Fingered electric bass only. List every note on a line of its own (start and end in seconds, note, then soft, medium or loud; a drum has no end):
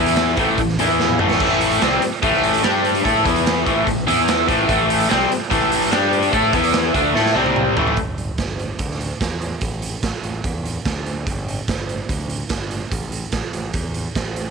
0.00 0.34 E2 medium
0.37 0.57 A1 medium
0.58 0.77 A1 medium
0.79 1.17 E2 medium
1.19 1.38 A1 medium
1.40 1.79 A1 medium
1.82 2.01 C2 medium
2.03 muted fingered electric bass stroke soft
2.23 2.61 A1 medium
2.65 3.03 G2 medium
3.05 3.24 A2 medium
3.25 3.64 E2 medium
3.67 3.86 A1 medium
3.87 4.06 A1 medium
4.08 4.46 E2 medium
4.49 4.68 A1 medium
4.69 5.07 A1 loud
5.11 5.30 C2 medium
5.31 muted fingered electric bass stroke soft
5.51 5.89 A1 loud
5.92 6.30 G2 medium
6.33 6.52 A2 medium
6.53 6.92 E2 medium
6.95 7.14 D2 medium
7.15 7.34 A2 medium
7.35 7.73 C2 medium
7.76 7.96 A1 medium
7.97 8.30 G1 medium
8.38 8.71 G1 medium
8.79 9.12 D2 medium
9.21 9.54 E2 medium
9.61 9.95 A1 medium
10.03 10.11 A1 medium
10.23 10.40 A1 medium
10.44 10.77 E2 medium
10.85 11.28 D2 medium
11.26 11.60 G1 medium
11.68 12.01 G1 medium
12.09 12.42 D2 medium
12.50 12.83 G1 medium
12.92 13.25 A1 medium
13.32 13.41 A1 medium
13.53 13.70 A1 medium
13.74 14.07 E2 medium
14.15 14.50 A1 medium